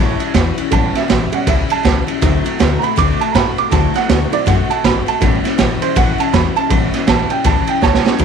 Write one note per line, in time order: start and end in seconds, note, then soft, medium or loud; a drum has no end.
0.00 0.14 A1 loud
0.00 0.20 A2 medium
0.00 0.20 E3 medium
0.00 0.21 G3 medium
0.00 0.20 C#4 medium
0.00 0.18 E4 medium
0.00 0.31 C#5 medium
0.00 0.33 A5 loud
0.19 0.33 G3 medium
0.19 0.34 C#4 soft
0.19 0.34 E4 medium
0.19 muted upright bass stroke medium
0.19 ride medium
0.34 0.51 E2 medium
0.34 0.57 E3 medium
0.34 0.58 G3 medium
0.34 0.57 C#4 medium
0.34 0.56 E4 medium
0.34 kick medium
0.34 snare loud
0.34 ride medium
0.58 0.72 G3 medium
0.58 0.72 C#4 medium
0.58 0.72 E4 medium
0.58 muted upright bass stroke medium
0.58 ride medium
0.71 0.89 A1 loud
0.71 0.95 A2 medium
0.71 0.95 E3 medium
0.71 0.99 G3 medium
0.71 0.95 G3 medium
0.71 0.99 B3 medium
0.71 0.99 C#4 medium
0.71 0.96 C#4 medium
0.71 0.94 E4 medium
0.71 0.95 A5 medium
0.71 kick loud
0.71 ride medium
0.95 1.08 G3 soft
0.95 1.09 C#4 soft
0.95 1.10 E4 medium
0.95 1.32 E5 medium
0.95 muted upright bass stroke medium
0.95 snare soft
0.95 ride medium
1.08 1.27 A1 medium
1.08 1.32 E3 medium
1.08 1.33 G3 medium
1.08 1.32 C#4 medium
1.08 1.31 E4 medium
1.08 snare loud
1.08 ride medium
1.32 1.46 G3 medium
1.32 1.47 G3 soft
1.32 1.46 B3 soft
1.32 1.46 C#4 medium
1.32 1.47 C#4 medium
1.32 1.47 E4 medium
1.32 1.48 F#5 medium
1.32 muted upright bass stroke medium
1.32 ride medium
1.47 1.64 C#2 medium
1.47 1.70 A2 medium
1.47 1.70 E3 medium
1.47 1.71 G3 medium
1.47 1.70 C#4 medium
1.47 1.68 E4 medium
1.47 1.70 E5 medium
1.47 kick loud
1.47 snare soft
1.47 ride medium
1.69 1.84 G3 soft
1.69 1.84 C#4 soft
1.69 1.84 E4 medium
1.69 2.07 A5 loud
1.69 muted upright bass stroke medium
1.69 ride medium
1.84 2.02 C#2 medium
1.84 2.07 E3 medium
1.84 2.08 G3 medium
1.84 2.07 C#4 medium
1.84 2.06 E4 medium
1.84 kick medium
1.84 snare loud
1.84 ride medium
2.07 2.22 G3 soft
2.07 2.23 C#4 medium
2.07 2.22 E4 medium
2.07 muted upright bass stroke medium
2.07 ride medium
2.22 2.39 D2 medium
2.22 2.45 D3 medium
2.22 2.80 F#3 medium
2.22 2.45 A3 medium
2.22 2.80 C4 medium
2.22 2.45 C4 loud
2.22 2.80 E4 medium
2.22 2.43 F#4 loud
2.22 kick loud
2.22 snare soft
2.22 ride medium
2.44 2.58 A3 soft
2.44 2.59 C4 medium
2.44 2.59 F#4 medium
2.44 muted upright bass stroke medium
2.44 ride medium
2.59 2.77 D2 medium
2.59 2.82 D3 medium
2.59 2.83 A3 medium
2.59 2.82 C4 medium
2.59 2.81 F#4 medium
2.59 snare loud
2.59 ride medium
2.79 2.97 F#4 medium
2.79 2.81 A#5 medium
2.83 2.96 A3 soft
2.83 2.96 C4 soft
2.83 2.97 B5 loud
2.83 muted upright bass stroke medium
2.83 ride medium
2.96 3.14 D2 medium
2.96 3.20 D3 medium
2.96 3.20 A3 medium
2.96 3.20 C4 medium
2.96 3.18 F#4 loud
2.96 3.20 D6 loud
2.96 kick loud
2.96 ride medium
3.19 3.34 A3 soft
3.19 3.35 C4 medium
3.19 3.34 F#4 medium
3.19 3.35 A5 loud
3.19 muted upright bass stroke medium
3.19 ride medium
3.32 3.52 A2 medium
3.32 3.57 D3 medium
3.32 3.58 A3 medium
3.32 3.34 A#5 medium
3.32 kick medium
3.32 snare loud
3.32 ride medium
3.36 3.57 C4 medium
3.36 3.55 F#4 medium
3.36 3.58 B5 loud
3.57 3.71 A3 soft
3.57 3.71 C4 medium
3.57 3.72 F#4 medium
3.57 3.72 D6 loud
3.57 muted upright bass stroke medium
3.57 ride medium
3.71 3.89 D2 medium
3.71 3.95 D3 medium
3.71 4.29 F#3 medium
3.71 3.95 A3 medium
3.71 4.29 C4 medium
3.71 3.94 C4 medium
3.71 4.29 E4 medium
3.71 3.93 F#4 medium
3.71 3.95 A5 medium
3.71 kick loud
3.71 snare soft
3.71 ride medium
3.94 4.10 A3 soft
3.94 4.10 C4 medium
3.94 4.09 F#4 medium
3.94 4.09 F#5 loud
3.94 muted upright bass stroke medium
3.94 snare soft
3.94 ride medium
4.09 4.26 D2 loud
4.09 4.32 D3 medium
4.09 4.33 A3 medium
4.09 4.33 C4 medium
4.09 4.31 F#4 medium
4.09 snare loud
4.09 ride medium
4.32 4.45 F#3 medium
4.32 4.45 A3 soft
4.32 4.45 C4 medium
4.32 4.46 C4 medium
4.32 4.46 E4 medium
4.32 4.47 F#4 medium
4.32 4.47 D5 loud
4.32 ride medium
4.46 4.63 F#2 loud
4.46 4.69 D3 medium
4.46 4.70 A3 medium
4.46 4.69 C4 medium
4.46 4.68 F#4 loud
4.46 4.69 F#5 medium
4.46 kick loud
4.46 snare soft
4.46 ride medium
4.69 4.84 A3 soft
4.69 4.84 C4 medium
4.69 4.84 F#4 medium
4.69 4.84 A5 medium
4.69 muted upright bass stroke medium
4.69 ride medium
4.84 5.01 G#1 medium
4.84 5.07 D3 medium
4.84 5.08 A3 medium
4.84 5.07 C4 medium
4.84 5.05 F#4 medium
4.84 5.07 B5 medium
4.84 kick medium
4.84 snare loud
4.84 ride medium
5.06 5.22 A3 soft
5.06 5.22 C4 medium
5.06 5.21 F#4 medium
5.06 5.22 A5 loud
5.06 muted upright bass stroke medium
5.06 ride medium
5.21 5.38 A1 medium
5.21 5.44 A2 medium
5.21 5.45 E3 medium
5.21 5.48 G3 medium
5.21 5.45 G3 medium
5.21 5.49 B3 medium
5.21 5.49 C#4 medium
5.21 5.44 C#4 medium
5.21 5.43 E4 medium
5.21 kick loud
5.21 snare soft
5.21 ride medium
5.44 5.58 G3 medium
5.44 5.59 C#4 medium
5.44 5.59 E4 medium
5.44 muted upright bass stroke medium
5.44 snare soft
5.44 ride medium
5.58 5.75 A1 loud
5.58 5.81 E3 medium
5.58 5.82 G3 medium
5.58 5.82 C#4 medium
5.58 5.80 E4 medium
5.58 snare loud
5.58 ride medium
5.81 5.95 G3 soft
5.81 5.95 C#4 soft
5.81 5.96 E4 medium
5.81 5.96 C5 medium
5.81 muted upright bass stroke medium
5.81 ride medium
5.96 6.13 A1 loud
5.96 6.19 A2 medium
5.96 6.19 E3 medium
5.96 6.19 G3 medium
5.96 6.19 C#4 loud
5.96 6.17 E4 medium
5.96 6.19 F#5 loud
5.96 kick loud
5.96 snare soft
5.96 ride medium
6.18 6.33 G3 soft
6.18 6.33 C#4 soft
6.18 6.33 E4 medium
6.18 6.33 A5 medium
6.18 muted upright bass stroke medium
6.18 ride medium
6.33 6.50 E2 medium
6.33 6.56 E3 medium
6.33 6.57 G3 medium
6.33 6.56 C#4 medium
6.33 6.55 E4 medium
6.33 6.56 B5 medium
6.33 kick medium
6.33 snare loud
6.33 ride medium
6.56 6.70 G3 soft
6.56 6.71 C#4 medium
6.56 6.71 E4 medium
6.56 6.70 A5 loud
6.56 muted upright bass stroke medium
6.56 ride medium
6.69 6.87 A1 medium
6.69 6.94 A2 medium
6.69 6.94 E3 medium
6.69 7.27 G3 medium
6.69 6.94 G3 medium
6.69 7.28 B3 medium
6.69 7.28 C#4 medium
6.69 6.94 C#4 medium
6.69 6.92 E4 medium
6.69 kick loud
6.69 ride medium
6.93 7.07 G3 medium
6.93 7.08 C#4 medium
6.93 7.08 E4 medium
6.93 muted upright bass stroke medium
6.93 snare soft
6.93 ride medium
7.07 7.24 A1 medium
7.07 7.30 E3 medium
7.07 7.31 G3 medium
7.07 7.30 C#4 medium
7.07 7.28 E4 medium
7.07 7.31 A5 loud
7.07 snare loud
7.07 ride medium
7.29 7.44 G3 medium
7.29 7.44 C#4 medium
7.29 7.45 E4 medium
7.29 7.45 G5 loud
7.29 muted upright bass stroke medium
7.29 ride medium
7.44 7.62 C#2 medium
7.44 7.68 A2 medium
7.44 7.68 E3 medium
7.44 7.68 G3 medium
7.44 7.67 C#4 medium
7.44 7.66 E4 medium
7.44 7.68 A5 loud
7.44 kick loud
7.44 snare soft
7.44 ride medium
7.67 7.81 G3 soft
7.67 7.82 C#4 medium
7.67 7.82 E4 medium
7.67 7.83 G5 medium
7.67 ride medium
7.81 7.99 C#2 medium
7.81 8.05 E3 medium
7.81 8.05 G3 medium
7.81 8.03 E4 medium
7.81 8.17 C#5 loud
7.81 8.19 A5 loud
7.81 kick medium
7.81 snare medium
7.94 snare medium
8.04 8.19 G3 soft
8.04 8.20 C#4 medium
8.04 8.19 E4 medium
8.04 snare loud
8.18 8.25 E1 loud
8.18 8.25 E2 medium
8.18 8.25 B2 medium
8.18 8.25 E3 medium
8.18 8.25 F#3 medium
8.18 8.25 G#3 medium
8.18 8.25 D4 medium
8.18 8.25 E4 medium
8.18 kick loud
8.18 ride medium